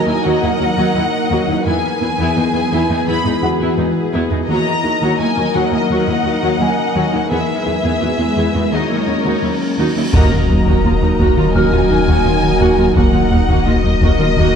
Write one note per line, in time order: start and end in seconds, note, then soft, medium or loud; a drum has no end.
0.00 1.66 F#3 medium
0.00 1.66 A#3 medium
0.00 1.66 D#4 medium
0.00 1.27 A#4 soft
0.00 1.66 A#4 medium
0.00 1.67 A#4 soft
0.00 1.63 D#5 soft
0.00 1.27 A#5 soft
0.07 0.15 D#2 soft
0.07 0.15 F#3 soft
0.07 0.18 D#4 soft
0.07 0.15 E4 soft
0.07 0.25 G#5 medium
0.25 0.32 D#2 medium
0.25 0.36 D#3 medium
0.25 0.42 F#3 medium
0.25 0.42 F#4 medium
0.25 1.66 F#5 medium
0.43 0.50 D#2 soft
0.43 0.50 F#3 soft
0.43 0.54 F#3 medium
0.43 0.50 E4 soft
0.61 0.68 D#2 soft
0.61 0.68 F#3 soft
0.61 0.71 D#4 soft
0.61 0.68 F#4 soft
0.78 0.85 D#2 medium
0.78 0.89 D#3 medium
0.78 0.95 F#3 medium
0.78 0.95 F#4 medium
0.95 1.02 D#2 soft
0.95 1.07 F#3 soft
0.95 1.04 F#3 soft
0.95 1.03 E4 soft
1.31 1.38 D#2 medium
1.31 1.42 D#3 medium
1.31 1.48 F#3 medium
1.31 1.48 F#4 medium
1.31 3.40 F#5 soft
1.49 1.56 D#2 soft
1.49 1.56 F#3 soft
1.49 1.59 D#4 medium
1.49 1.56 E4 soft
1.66 1.73 E2 medium
1.66 1.77 E3 medium
1.66 4.49 E3 medium
1.66 1.83 B3 medium
1.66 4.49 B3 medium
1.66 1.83 E4 medium
1.66 4.49 E4 medium
1.66 4.45 G#4 soft
1.66 4.49 G#4 medium
1.66 4.45 B4 soft
1.66 3.05 G#5 medium
2.02 2.09 E2 soft
2.02 2.09 B3 soft
2.02 2.12 E4 soft
2.02 2.09 E4 soft
2.19 2.26 E2 medium
2.19 2.30 E3 medium
2.19 2.35 B3 medium
2.19 2.36 E4 medium
2.36 2.44 E2 soft
2.36 2.44 B3 soft
2.36 2.48 B3 soft
2.36 2.44 D#4 soft
2.54 2.62 E2 soft
2.54 2.61 B3 soft
2.54 2.65 B3 medium
2.54 2.61 E4 soft
2.72 2.79 E2 medium
2.72 2.83 E3 medium
2.72 2.89 B3 medium
2.72 2.89 E4 medium
2.90 2.97 E2 soft
2.90 2.97 B3 soft
2.90 2.97 D#4 soft
2.90 3.01 E4 soft
3.07 3.15 E2 medium
3.07 3.18 E3 medium
3.07 3.24 B3 medium
3.07 3.24 E4 medium
3.07 3.43 B5 medium
3.25 3.32 E2 soft
3.25 3.36 G#3 medium
3.25 3.32 B3 soft
3.25 3.32 D#4 soft
3.43 3.50 E2 soft
3.43 3.50 B3 soft
3.43 3.54 E4 soft
3.43 3.50 E4 soft
3.43 5.51 F#4 soft
3.43 5.51 F#5 soft
3.60 3.67 E2 medium
3.60 3.71 E3 medium
3.60 3.77 B3 soft
3.60 3.77 E4 medium
3.78 3.85 E2 soft
3.78 3.89 G#3 soft
3.78 3.86 B3 soft
3.78 3.86 D#4 soft
4.13 4.21 E2 medium
4.13 4.24 E3 medium
4.13 4.30 B3 medium
4.13 4.30 E4 medium
4.31 4.38 E2 soft
4.31 4.38 B3 soft
4.31 4.38 D#4 soft
4.31 4.42 E4 soft
4.49 4.56 D#2 medium
4.49 4.59 D#3 medium
4.49 4.66 F#3 medium
4.49 7.32 F#3 medium
4.49 7.32 A#3 medium
4.49 7.31 D#4 medium
4.49 4.65 F#4 medium
4.49 7.27 A#4 soft
4.49 7.31 A#4 medium
4.49 7.27 D#5 soft
4.49 5.16 A#5 medium
4.84 4.91 D#2 soft
4.84 4.92 F#3 soft
4.84 4.95 D#4 medium
4.84 4.91 F#4 soft
5.02 5.09 D#2 soft
5.02 5.12 D#3 medium
5.02 5.19 F#3 medium
5.02 5.18 F#4 medium
5.19 5.27 D#2 soft
5.19 5.27 F#3 soft
5.19 5.30 A#3 medium
5.19 5.27 E4 soft
5.19 5.55 G#5 medium
5.37 5.44 D#2 soft
5.37 5.44 F#3 soft
5.37 5.47 A#3 medium
5.37 5.44 F#4 soft
5.54 5.62 D#2 medium
5.54 5.65 D#3 medium
5.54 5.71 F#3 medium
5.54 5.71 F#4 medium
5.54 5.73 F#5 medium
5.72 5.80 D#2 soft
5.72 5.80 F#3 soft
5.72 5.83 D#4 soft
5.72 5.80 E4 soft
5.72 5.91 D#5 medium
5.90 5.97 D#2 medium
5.90 6.01 D#3 medium
5.90 6.06 F#3 medium
5.90 6.07 F#4 medium
5.90 7.29 F#5 medium
6.07 6.15 D#2 soft
6.07 6.15 F#3 soft
6.07 6.18 F#3 soft
6.07 6.15 E4 soft
6.25 6.32 D#2 soft
6.25 6.32 F#3 soft
6.25 6.36 D#4 soft
6.25 6.32 F#4 soft
6.43 6.50 D#2 soft
6.43 6.53 D#3 medium
6.43 6.59 F#3 medium
6.43 6.59 F#4 soft
6.60 6.67 D#2 soft
6.60 6.71 F#3 soft
6.60 6.68 F#3 soft
6.60 6.68 E4 soft
6.60 8.69 G#5 soft
6.95 7.02 D#2 medium
6.95 7.06 D#3 medium
6.95 7.12 F#3 medium
6.95 7.12 F#4 medium
7.13 7.20 D#2 soft
7.13 7.20 F#3 soft
7.13 7.24 D#4 soft
7.13 7.20 E4 soft
7.31 7.38 E2 medium
7.31 7.42 E3 medium
7.31 8.73 G#3 medium
7.31 7.47 B3 medium
7.31 8.73 B3 medium
7.31 8.73 E4 soft
7.31 7.47 G#4 soft
7.31 8.72 G#4 soft
7.31 8.73 G#4 medium
7.31 8.70 B4 soft
7.31 8.70 E5 medium
7.31 cymbal swell soft
7.66 7.73 E2 soft
7.66 7.74 B3 soft
7.66 7.77 E4 medium
7.66 7.73 G#4 soft
7.84 7.91 E2 soft
7.84 7.95 E3 medium
7.84 8.01 B3 soft
7.84 8.00 G#4 soft
8.01 8.09 E2 soft
8.01 8.09 B3 soft
8.01 8.12 B3 soft
8.01 8.09 F#4 soft
8.19 8.26 E2 soft
8.19 8.30 B3 soft
8.19 8.27 B3 soft
8.19 8.27 G#4 soft
8.37 8.44 E2 medium
8.37 8.48 E3 medium
8.37 8.54 B3 soft
8.37 8.54 G#4 soft
8.54 8.62 E2 soft
8.54 8.62 B3 soft
8.54 8.65 E4 soft
8.54 8.62 F#4 soft
8.72 8.79 D#2 soft
8.72 8.83 D#3 medium
8.72 10.12 F#3 medium
8.72 10.12 A#3 medium
8.72 10.14 C#4 medium
8.72 8.89 D#4 soft
8.72 8.89 F#4 soft
8.72 9.94 A#4 soft
8.72 10.11 A#4 medium
8.72 9.94 C#5 soft
8.72 9.43 D#5 medium
8.90 8.97 D#2 soft
8.90 9.01 F#3 soft
8.90 8.98 D#4 soft
8.90 8.97 E4 soft
9.07 9.14 D#2 soft
9.07 9.18 C#4 soft
9.07 9.15 D#4 soft
9.07 9.15 F#4 soft
9.25 9.32 D#2 soft
9.25 9.36 D#3 medium
9.25 9.42 D#4 soft
9.25 9.42 F#4 soft
9.43 9.50 D#2 soft
9.43 9.54 F#3 soft
9.43 9.50 D#4 soft
9.43 9.50 E4 soft
9.78 9.85 D#2 soft
9.78 9.89 D#3 medium
9.78 9.95 D#4 soft
9.78 9.95 F#4 soft
9.96 10.03 D#2 soft
9.96 10.06 C#4 soft
9.96 10.03 D#4 soft
9.96 10.04 E4 soft
10.12 12.92 D#1 medium
10.12 10.24 D#2 loud
10.12 10.30 D#2 medium
10.12 10.24 D#3 medium
10.12 12.92 F#3 medium
10.12 12.92 A#3 medium
10.12 10.30 A#3 medium
10.12 12.91 D#4 medium
10.12 12.92 F#4 medium
10.12 10.30 F#4 medium
10.12 12.92 A#4 medium
10.12 12.92 D#5 medium
10.12 11.51 A#5 medium
10.12 taiko medium
10.12 sub drop medium
10.31 10.38 D#2 soft
10.31 10.42 D#3 medium
10.31 10.42 A#3 medium
10.31 10.39 A#3 soft
10.31 10.39 F4 soft
10.49 10.56 D#2 soft
10.49 10.60 D#2 medium
10.49 10.60 F#3 medium
10.49 10.57 A#3 soft
10.49 10.56 D#4 soft
10.66 10.73 D#2 medium
10.66 10.77 D#2 medium
10.66 10.77 D#3 medium
10.66 10.83 A#3 medium
10.66 10.83 F#4 soft
10.66 taiko medium
10.84 10.95 D#2 medium
10.84 10.91 D#2 soft
10.84 10.92 A#3 soft
10.84 10.95 D#4 medium
10.84 10.92 F4 soft
11.02 11.09 D#2 soft
11.02 11.13 D#2 medium
11.02 11.13 F#3 medium
11.02 11.09 A#3 soft
11.02 11.09 D#4 soft
11.19 11.26 D#2 medium
11.19 11.30 D#2 medium
11.19 11.27 D#2 medium
11.19 11.30 D#3 medium
11.19 11.36 A#3 medium
11.19 11.36 F#4 medium
11.19 taiko medium
11.37 11.44 D#2 soft
11.37 11.48 D#3 medium
11.37 11.44 A#3 soft
11.37 11.48 A#3 medium
11.37 11.44 F4 soft
11.55 11.62 D#2 medium
11.55 11.65 D#2 medium
11.55 11.62 D#2 medium
11.55 11.66 D#3 medium
11.55 11.72 A#3 medium
11.55 11.71 F#4 soft
11.55 13.63 F#4 soft
11.55 12.96 G#5 medium
11.55 13.63 F6 soft
11.72 11.83 D#2 medium
11.72 11.80 D#2 soft
11.72 11.83 F#3 medium
11.72 11.80 A#3 soft
11.72 11.80 F4 soft
11.90 12.01 D#2 soft
11.90 11.97 D#2 soft
11.90 11.98 A#3 soft
11.90 12.01 D#4 medium
11.90 11.98 D#4 soft
12.07 12.18 D#2 medium
12.07 12.15 D#2 medium
12.07 12.19 D#3 medium
12.07 12.24 A#3 medium
12.07 12.24 F#4 medium
12.07 taiko medium
12.25 12.32 D#2 soft
12.25 12.36 D#3 medium
12.25 12.36 A#3 medium
12.25 12.33 A#3 soft
12.25 12.33 F4 soft
12.43 12.54 D#3 medium
12.60 12.71 D#2 medium
12.60 12.68 D#2 medium
12.60 12.71 D#3 medium
12.60 12.77 A#3 medium
12.60 12.77 F#4 medium
12.78 12.89 D#2 medium
12.78 12.85 D#2 soft
12.78 12.89 F#3 medium
12.78 12.86 A#3 soft
12.78 12.86 F4 soft
12.95 14.56 D#1 medium
12.95 13.06 D#2 medium
12.95 13.03 D#2 medium
12.95 13.07 D#3 medium
12.95 14.56 F#3 medium
12.95 13.12 A#3 medium
12.95 14.56 A#3 medium
12.95 14.56 D#4 medium
12.95 13.12 F#4 medium
12.95 14.56 F#4 medium
12.95 14.56 A#4 soft
12.95 14.56 A#4 medium
12.95 14.56 D#5 soft
12.95 13.65 F#5 medium
12.95 taiko medium
13.13 13.20 D#2 soft
13.13 13.24 D#3 medium
13.13 13.21 A#3 soft
13.13 13.25 A#3 medium
13.13 13.21 F4 soft
13.31 13.38 D#2 soft
13.31 13.42 D#2 medium
13.31 13.38 D#2 soft
13.31 13.42 F#3 medium
13.31 13.39 A#3 soft
13.31 13.39 D#4 soft
13.48 13.55 D#2 medium
13.48 13.59 D#2 medium
13.48 13.60 D#3 medium
13.48 13.66 A#3 medium
13.48 13.66 F#4 medium
13.48 taiko medium
13.66 13.73 D#2 soft
13.66 13.77 D#2 medium
13.66 13.74 D#2 soft
13.66 13.74 A#3 soft
13.66 13.77 D#4 medium
13.66 13.74 F4 soft
13.66 14.56 D#5 medium
13.84 13.91 D#2 soft
13.84 13.95 D#2 medium
13.84 13.95 F#3 medium
13.84 13.92 A#3 soft
13.84 13.92 D#4 soft
14.01 14.12 D#2 medium
14.01 14.09 D#2 medium
14.01 14.13 D#3 medium
14.01 14.19 A#3 medium
14.01 14.19 F#4 medium
14.01 taiko medium
14.19 14.26 D#2 soft
14.19 14.30 D#3 medium
14.19 14.30 A#3 medium
14.19 14.27 A#3 soft
14.19 14.27 F4 soft
14.37 14.48 D#2 medium
14.37 14.44 D#2 medium
14.37 14.48 D#3 medium
14.37 14.54 A#3 medium
14.37 14.54 F#4 medium